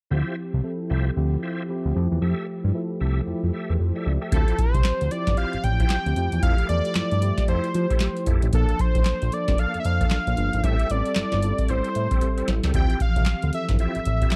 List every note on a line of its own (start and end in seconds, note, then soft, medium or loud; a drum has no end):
0.11 0.23 D2 loud
0.11 0.54 F3 medium
0.11 0.54 C4 medium
0.11 0.54 E4 medium
0.11 0.36 F4 medium
0.11 0.36 G4 medium
0.11 0.54 G4 medium
0.11 0.36 C5 medium
0.11 0.36 E5 medium
0.54 0.62 C2 medium
0.63 1.07 F3 medium
0.63 1.07 C4 medium
0.63 1.07 E4 medium
0.63 1.07 A4 medium
0.90 1.11 C2 loud
0.90 1.10 F4 medium
0.90 1.10 G4 medium
0.90 1.11 C5 medium
0.90 1.11 E5 medium
1.16 1.37 D2 loud
1.16 1.59 F3 medium
1.16 1.59 C4 medium
1.16 1.60 E4 medium
1.16 1.60 G4 medium
1.43 1.63 F4 medium
1.43 1.63 G4 medium
1.43 1.63 C5 medium
1.43 1.63 E5 medium
1.69 1.94 F3 medium
1.69 1.96 C4 medium
1.69 1.94 E4 medium
1.69 1.95 G4 medium
1.85 1.93 D2 medium
1.95 2.08 F2 loud
1.95 2.60 F3 medium
1.95 2.61 A3 medium
1.95 2.61 E4 medium
1.95 2.61 G4 loud
2.12 2.19 E2 medium
2.21 2.34 F2 loud
2.21 2.46 G4 medium
2.21 2.46 A4 medium
2.21 2.47 E5 medium
2.64 2.72 G2 medium
2.74 3.17 F3 medium
2.74 3.17 A3 medium
2.74 3.18 E4 medium
2.74 3.18 A4 medium
3.00 3.21 C2 medium
3.00 3.21 G4 medium
3.00 3.21 A4 medium
3.00 3.21 E5 medium
3.26 3.34 F2 soft
3.26 3.70 F3 medium
3.26 3.70 A3 medium
3.26 3.70 E4 medium
3.26 3.70 G4 medium
3.44 3.51 F2 medium
3.53 3.73 G4 medium
3.53 3.74 A4 medium
3.53 3.74 E5 medium
3.70 3.78 E2 medium
3.80 3.92 F2 medium
3.80 3.95 C5 medium
3.95 4.13 G4 medium
3.95 4.13 A4 medium
3.95 4.06 D5 medium
3.95 4.13 E5 medium
4.06 4.18 C#2 loud
4.06 4.21 E5 medium
4.21 4.31 G4 medium
4.21 4.39 A4 medium
4.21 4.39 E5 medium
4.21 4.47 G5 medium
4.31 4.44 D2 loud
4.31 4.94 F3 medium
4.31 4.95 C4 medium
4.31 4.57 E4 medium
4.31 4.95 E4 medium
4.31 4.57 F4 medium
4.31 4.40 F#4 medium
4.31 4.57 G4 medium
4.31 4.61 A4 medium
4.31 4.57 C5 medium
4.31 kick loud
4.31 closed hi-hat medium
4.39 4.98 G4 medium
4.48 closed hi-hat soft
4.59 5.13 C5 loud
4.59 kick loud
4.59 closed hi-hat medium
4.74 4.82 C2 medium
4.74 kick loud
4.74 closed hi-hat medium
4.84 snare loud
4.84 clap medium
4.84 closed hi-hat medium
5.01 5.09 D2 medium
5.01 closed hi-hat soft
5.11 5.84 F3 medium
5.11 5.84 C4 medium
5.11 5.84 E4 medium
5.11 5.84 G4 medium
5.11 5.37 D5 loud
5.11 closed hi-hat medium
5.27 5.35 G1 medium
5.27 kick medium
5.27 snare medium
5.27 closed hi-hat medium
5.37 5.58 E4 medium
5.37 5.58 F4 medium
5.37 5.58 G4 medium
5.37 5.58 C5 medium
5.37 5.65 F5 loud
5.37 closed hi-hat medium
5.53 5.58 A1 soft
5.53 closed hi-hat soft
5.64 5.84 A1 medium
5.64 6.42 G5 loud
5.64 closed hi-hat medium
5.79 5.97 E4 medium
5.79 5.97 F4 medium
5.79 5.97 G4 medium
5.79 5.97 C5 medium
5.79 kick medium
5.79 closed hi-hat soft
5.90 snare loud
5.90 clap medium
5.90 closed hi-hat medium
6.06 6.14 D2 loud
6.06 6.15 F3 medium
6.06 6.17 C4 medium
6.06 6.16 E4 medium
6.06 6.16 G4 medium
6.06 closed hi-hat soft
6.16 6.29 F2 loud
6.16 6.61 F3 medium
6.16 6.61 A3 medium
6.16 6.61 E4 medium
6.16 6.61 G4 medium
6.16 closed hi-hat medium
6.32 6.40 E2 medium
6.32 closed hi-hat medium
6.43 6.55 F2 loud
6.43 6.67 E4 medium
6.43 6.67 G4 medium
6.43 6.68 A4 medium
6.43 6.67 F5 loud
6.43 kick loud
6.43 closed hi-hat medium
6.58 closed hi-hat soft
6.68 6.81 E2 medium
6.68 6.81 F3 medium
6.68 6.81 A3 medium
6.68 6.82 E4 medium
6.68 6.82 A4 medium
6.68 7.44 D5 loud
6.68 closed hi-hat medium
6.85 7.14 F3 medium
6.85 7.14 A3 medium
6.85 7.15 E4 medium
6.85 7.15 G4 medium
6.85 closed hi-hat medium
6.95 7.02 G2 soft
6.95 snare loud
6.95 clap medium
6.95 closed hi-hat medium
7.12 7.32 G2 medium
7.12 closed hi-hat soft
7.21 7.84 F3 medium
7.21 7.84 A3 medium
7.21 7.84 E4 medium
7.21 7.85 G4 medium
7.21 closed hi-hat medium
7.38 kick medium
7.38 snare medium
7.38 closed hi-hat medium
7.48 7.60 F2 loud
7.48 7.68 E4 medium
7.48 7.68 G4 medium
7.48 7.69 A4 medium
7.48 8.23 C5 medium
7.48 closed hi-hat medium
7.64 closed hi-hat soft
7.74 7.87 F3 loud
7.74 closed hi-hat medium
7.90 8.07 E4 medium
7.90 8.07 G4 medium
7.90 8.08 A4 medium
7.90 kick medium
7.90 closed hi-hat medium
8.00 8.44 F3 medium
8.00 8.44 A3 medium
8.00 8.44 E4 medium
8.00 8.44 G4 medium
8.00 snare loud
8.00 clap medium
8.00 closed hi-hat medium
8.17 closed hi-hat soft
8.26 8.39 F2 medium
8.26 8.47 E4 medium
8.26 8.47 G4 medium
8.26 8.47 A4 medium
8.26 kick loud
8.26 closed hi-hat medium
8.42 8.51 A1 medium
8.42 closed hi-hat medium
8.52 8.65 A#1 loud
8.52 9.15 F3 medium
8.52 9.16 A#3 medium
8.52 8.78 A#3 medium
8.52 8.78 D4 medium
8.52 9.16 D4 medium
8.52 8.78 A4 medium
8.52 9.16 A4 medium
8.52 8.82 A4 loud
8.52 kick loud
8.52 closed hi-hat medium
8.69 closed hi-hat soft
8.79 9.35 C5 loud
8.79 kick medium
8.79 closed hi-hat medium
8.95 9.03 A1 medium
8.95 kick loud
8.95 closed hi-hat medium
9.05 snare loud
9.05 clap medium
9.05 closed hi-hat medium
9.22 9.30 A#1 medium
9.22 closed hi-hat soft
9.32 10.05 F3 medium
9.32 10.05 A#3 medium
9.32 10.05 D4 medium
9.32 10.05 A4 medium
9.32 9.61 D5 loud
9.32 closed hi-hat medium
9.48 9.56 F1 loud
9.48 kick medium
9.48 snare medium
9.48 closed hi-hat medium
9.58 9.79 A#3 medium
9.58 9.79 D4 medium
9.58 9.79 A4 medium
9.58 9.79 F5 loud
9.58 closed hi-hat medium
9.74 9.79 F2 soft
9.74 closed hi-hat soft
9.80 9.87 E5 medium
9.85 10.05 F2 medium
9.85 10.66 F5 loud
9.85 closed hi-hat medium
10.01 10.18 A#3 medium
10.01 10.18 D4 medium
10.01 10.18 A4 medium
10.01 kick medium
10.01 closed hi-hat soft
10.10 snare loud
10.10 clap medium
10.10 closed hi-hat medium
10.27 10.35 A#1 medium
10.27 10.56 F3 medium
10.27 10.57 A#3 medium
10.27 10.57 D4 medium
10.27 10.57 F4 medium
10.27 closed hi-hat soft
10.37 10.50 G1 medium
10.37 closed hi-hat medium
10.53 10.62 G#1 medium
10.53 closed hi-hat medium
10.63 10.76 A1 loud
10.63 10.85 G3 medium
10.63 10.88 C4 medium
10.63 10.85 C4 medium
10.63 10.85 E4 medium
10.63 10.88 G4 medium
10.63 10.88 A4 loud
10.63 10.86 A4 medium
10.63 10.93 E5 loud
10.63 kick loud
10.63 closed hi-hat medium
10.79 closed hi-hat soft
10.90 11.02 A1 medium
10.90 11.02 G3 medium
10.90 11.03 C4 medium
10.90 11.03 E4 medium
10.90 11.03 A4 medium
10.90 11.71 D5 loud
10.90 closed hi-hat medium
11.06 11.36 G3 medium
11.06 11.36 C4 medium
11.06 11.36 E4 medium
11.06 11.36 A4 medium
11.06 closed hi-hat medium
11.15 11.23 G1 soft
11.15 snare loud
11.15 clap medium
11.15 closed hi-hat medium
11.32 11.53 G1 loud
11.32 snare medium
11.32 closed hi-hat soft
11.42 12.05 G3 medium
11.42 12.05 C4 medium
11.42 12.05 E4 medium
11.42 12.06 A4 medium
11.42 closed hi-hat medium
11.58 kick medium
11.58 closed hi-hat medium
11.68 11.82 A1 medium
11.68 11.89 C4 medium
11.68 11.89 G4 medium
11.68 11.89 A4 medium
11.68 12.48 C5 medium
11.68 closed hi-hat medium
11.84 closed hi-hat soft
11.95 12.08 A2 medium
11.95 closed hi-hat medium
12.11 12.28 C4 medium
12.11 12.28 G4 medium
12.11 12.29 A4 medium
12.11 kick medium
12.11 closed hi-hat medium
12.21 12.64 G3 medium
12.21 12.65 C4 medium
12.21 12.65 E4 medium
12.21 12.65 A4 medium
12.21 kick medium
12.21 closed hi-hat medium
12.37 12.55 C4 medium
12.37 12.55 G4 medium
12.37 12.55 A4 medium
12.37 closed hi-hat soft
12.48 12.60 A1 medium
12.48 snare medium
12.48 closed hi-hat medium
12.63 12.72 C#2 loud
12.63 12.73 C4 medium
12.63 12.73 G4 medium
12.63 12.81 A4 medium
12.63 snare medium
12.63 closed hi-hat medium
12.74 12.87 D2 loud
12.74 13.37 E3 medium
12.74 13.37 F3 medium
12.74 12.99 C4 medium
12.74 13.37 C4 medium
12.74 12.99 E4 medium
12.74 12.99 F4 medium
12.74 12.99 G4 medium
12.74 13.37 G4 medium
12.74 13.00 G5 loud
12.74 kick loud
12.74 closed hi-hat medium
12.90 closed hi-hat soft
13.00 13.50 F5 medium
13.00 kick medium
13.00 closed hi-hat medium
13.16 13.24 C2 medium
13.16 kick loud
13.16 closed hi-hat medium
13.25 snare loud
13.25 clap medium
13.25 closed hi-hat medium
13.42 13.51 D2 medium
13.42 closed hi-hat soft
13.53 14.26 F3 medium
13.53 14.26 C4 medium
13.53 14.26 E4 medium
13.53 14.26 A4 medium
13.53 13.66 E5 medium
13.53 closed hi-hat medium
13.69 13.77 G1 medium
13.69 kick medium
13.69 snare medium
13.69 closed hi-hat medium
13.79 14.00 C4 medium
13.79 14.00 E4 medium
13.79 14.00 F4 medium
13.79 14.00 G4 medium
13.79 14.36 E5 loud
13.79 closed hi-hat medium
13.95 14.00 A1 soft
13.95 closed hi-hat soft
14.05 14.26 A1 medium
14.05 closed hi-hat medium
14.22 14.36 C4 medium
14.22 14.36 E4 medium
14.22 14.36 F4 medium
14.22 14.36 G4 medium
14.22 kick medium
14.22 closed hi-hat soft
14.31 snare loud
14.31 clap medium
14.31 closed hi-hat medium